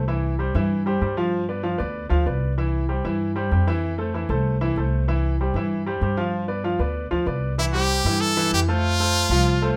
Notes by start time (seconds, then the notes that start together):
Already playing: C2
0.08 E3 E4 E5
0.39 G3 G4 C5
0.55 G2 E3 E4 E5
0.86 G3 G4 C5
1.01 G2 G3 G4 C5
1.17 F3 F4 F5
1.49 B3 B4 D5
1.63 F3 F4 F5
1.78 D2 B3 B4 D5
2.09 D2 F3 F4 F5
2.26 C2 B3 B4 D5
2.58 E3 E4 E5
2.89 G3 G4 C5
3.05 G2 E3 E4 E5
3.36 G3 G4 C5
3.51 F2 G3 G4 C5
3.67 E3 E4 E5
3.98 A3 A4 C5
4.14 E3 E4 E5
4.29 C2 A3 A4 C5
4.61 E3 E4 E5
4.76 C2 A3 A4 C5
5.08 E3 E4 E5
5.41 G3 G4 C5
5.54 G2 E3 E4 E5
5.86 G3 G4 C5
6.01 G2 G3 G4 C5
6.17 F3 F4 F5
6.48 B3 B4 D5
6.64 F3 F4 F5
6.79 D2 B3 B4 D5
7.11 D2 F3 F4 F5
7.26 C2 B3 B4 D5
7.58 E3 E4 E5
7.73 G3 G4 C5
8.04 G2 E3 E4 E5
8.21 A4
8.37 E3 E4 E5
8.51 F2 G4
8.68 A3 F4 A4 C5
9.00 A3 A4 C5
9.29 C2 F3 F4 F5
9.62 A3 A4 C5